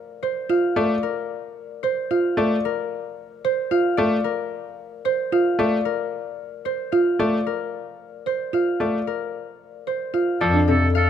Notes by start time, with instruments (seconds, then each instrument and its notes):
Already playing: harp A#4 C5 D5 F5
0.23 harp C5, marimba C5
0.49 marimba F4, harp F5
0.76 grand piano A3, harp D5
1.03 harp A#4
1.83 harp C5, marimba C5
2.11 marimba F4, harp F5
2.37 grand piano A3, harp D5
2.65 harp A#4
3.44 harp C5, marimba C5
3.71 marimba F4, harp F5
3.97 grand piano A3, harp D5
4.24 harp A#4
5.05 harp C5, marimba C5
5.32 marimba F4, harp F5
5.59 grand piano A3, harp D5
5.85 harp A#4
6.65 harp C5, marimba C5
6.92 marimba F4, harp F5
7.19 grand piano A3, harp D5
7.47 harp A#4
8.26 marimba C5, harp C5
8.53 marimba F4, harp F5
8.80 grand piano A3, harp D5
9.07 harp A#4
9.87 marimba C5, harp C5
10.14 marimba F4, harp F5
10.41 bass clarinet F2, grand piano F3, oboe A4, harp D5
10.54 marimba D4
10.68 grand piano C3, harp A4, oboe A4
10.95 oboe A4, harp F5